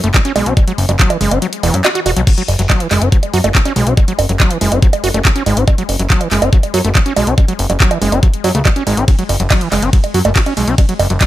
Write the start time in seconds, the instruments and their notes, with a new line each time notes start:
0.04 analog synth bass F#1, acid bass A3, closed hi-hat
0.14 acid bass F#3, kick, clap, closed hi-hat, high bongo
0.25 acid bass C#4, closed hi-hat
0.36 analog synth bass B1, acid bass G#3, open hi-hat, high bongo
0.46 analog synth bass B1, acid bass C#4, closed hi-hat
0.57 acid bass F#3, kick, closed hi-hat, high bongo
0.68 acid bass F#3, closed hi-hat
0.78 analog synth bass F#1, open hi-hat
0.89 analog synth bass F#1, acid bass F#3, closed hi-hat, high bongo
0.99 acid bass F#3, kick, clap, closed hi-hat
1.10 acid bass E3, closed hi-hat, high bongo
1.21 analog synth bass F#1, acid bass G#3, open hi-hat
1.31 analog synth bass F#1, acid bass C#4, closed hi-hat, high bongo
1.42 acid bass F#3, closed hi-hat
1.53 closed hi-hat
1.63 analog synth bass E1, acid bass E3, open hi-hat, high bongo
1.74 analog synth bass F#2, acid bass G#3, closed hi-hat
1.85 acid bass F#4, clap, closed hi-hat, high bongo
1.95 acid bass F#4, closed hi-hat
2.06 analog synth bass E1, acid bass F#4, open hi-hat, high bongo
2.16 analog synth bass B1, acid bass F#3, closed hi-hat
2.27 acid bass F#3, kick, closed hi-hat, crash
2.38 acid bass F#3, closed hi-hat
2.48 analog synth bass F#1, open hi-hat, high bongo
2.59 analog synth bass F#1, acid bass F#3, closed hi-hat
2.70 acid bass F#3, kick, clap, closed hi-hat, high bongo
2.80 acid bass E3, closed hi-hat
2.91 analog synth bass F#1, acid bass G#3, clap, open hi-hat, high bongo
3.02 analog synth bass F#1, acid bass C#4, closed hi-hat
3.12 acid bass F#3, kick, closed hi-hat
3.23 closed hi-hat, high bongo
3.33 analog synth bass F#2, acid bass F#4, open hi-hat
3.44 analog synth bass F#1, acid bass A3, closed hi-hat, high bongo
3.55 acid bass F#3, kick, clap, closed hi-hat
3.65 acid bass C#4, closed hi-hat, high bongo
3.76 analog synth bass B1, acid bass G#3, open hi-hat
3.87 analog synth bass B1, acid bass C#4, closed hi-hat
3.97 acid bass F#3, kick, closed hi-hat, high bongo
4.08 acid bass F#3, closed hi-hat
4.19 analog synth bass F#1, open hi-hat, high bongo
4.29 analog synth bass F#1, acid bass F#3, closed hi-hat
4.40 acid bass F#3, kick, clap, closed hi-hat, high bongo
4.51 acid bass E3, closed hi-hat
4.61 analog synth bass F#1, acid bass G#3, open hi-hat
4.72 analog synth bass F#1, acid bass C#4, closed hi-hat, high bongo
4.82 acid bass F#3, kick, closed hi-hat
4.93 closed hi-hat, high bongo
5.04 analog synth bass F#1, acid bass F#4, open hi-hat
5.14 analog synth bass F#1, acid bass A3, closed hi-hat, high bongo
5.25 acid bass F#3, kick, clap, closed hi-hat
5.36 acid bass C#4, closed hi-hat
5.46 analog synth bass G#1, acid bass G#3, open hi-hat, high bongo
5.57 analog synth bass G#1, acid bass C#4, closed hi-hat
5.68 acid bass F#3, kick, closed hi-hat, high bongo
5.78 acid bass F#3, closed hi-hat
5.89 analog synth bass F#1, open hi-hat, high bongo
5.99 analog synth bass F#1, acid bass F#3, closed hi-hat
6.10 acid bass F#3, kick, clap, closed hi-hat
6.21 acid bass E3, closed hi-hat, high bongo
6.31 analog synth bass F#1, acid bass G#3, clap, open hi-hat
6.42 analog synth bass F#1, acid bass C#4, closed hi-hat, high bongo
6.53 acid bass F#3, kick, closed hi-hat
6.63 closed hi-hat, high bongo
6.74 analog synth bass F#2, acid bass F#4, open hi-hat
6.84 analog synth bass F#1, acid bass A3, closed hi-hat
6.95 acid bass F#3, kick, clap, closed hi-hat, high bongo
7.06 acid bass C#4, closed hi-hat
7.16 analog synth bass B1, acid bass G#3, open hi-hat, high bongo
7.27 analog synth bass B1, acid bass C#4, closed hi-hat
7.38 acid bass F#3, kick, closed hi-hat, high bongo
7.48 acid bass F#3, closed hi-hat
7.59 analog synth bass F#1, open hi-hat
7.70 analog synth bass F#1, acid bass F#3, closed hi-hat, high bongo
7.80 acid bass F#3, kick, clap, closed hi-hat
7.91 acid bass E3, closed hi-hat, high bongo
8.02 analog synth bass F#1, acid bass G#3, open hi-hat
8.12 analog synth bass F#1, acid bass C#4, closed hi-hat, high bongo
8.23 acid bass F#3, kick, closed hi-hat
8.34 closed hi-hat
8.44 analog synth bass F#2, acid bass F#4, open hi-hat, high bongo
8.55 analog synth bass C#2, acid bass A3, closed hi-hat
8.65 acid bass F#3, kick, clap, closed hi-hat, high bongo
8.76 acid bass C#4, closed hi-hat
8.87 analog synth bass G#1, acid bass G#3, open hi-hat, high bongo
8.97 analog synth bass G#1, acid bass C#4, closed hi-hat
9.08 acid bass F#3, kick, closed hi-hat, ride
9.19 acid bass F#3, closed hi-hat
9.29 analog synth bass F#1, open hi-hat, high bongo
9.40 analog synth bass F#1, acid bass F#3, closed hi-hat
9.51 acid bass F#3, kick, clap, closed hi-hat, ride, high bongo
9.61 acid bass E3, closed hi-hat
9.72 analog synth bass F#1, acid bass G#3, clap, open hi-hat, high bongo
9.82 analog synth bass F#1, acid bass C#4, closed hi-hat
9.93 acid bass F#3, kick, closed hi-hat, ride
10.04 closed hi-hat, high bongo
10.14 analog synth bass F#2, acid bass F#4, open hi-hat
10.25 analog synth bass F#1, acid bass A3, closed hi-hat, high bongo
10.36 acid bass F#4, kick, clap, closed hi-hat, ride
10.46 acid bass C#4, closed hi-hat, high bongo
10.57 analog synth bass B1, acid bass G#3, open hi-hat
10.68 analog synth bass B1, acid bass C#4, closed hi-hat
10.78 acid bass F#3, kick, closed hi-hat, ride, high bongo
10.89 acid bass F#3, closed hi-hat
10.99 analog synth bass F#1, open hi-hat, high bongo
11.10 analog synth bass F#1, acid bass F#3, closed hi-hat
11.21 acid bass F#3, kick, clap, closed hi-hat, ride, high bongo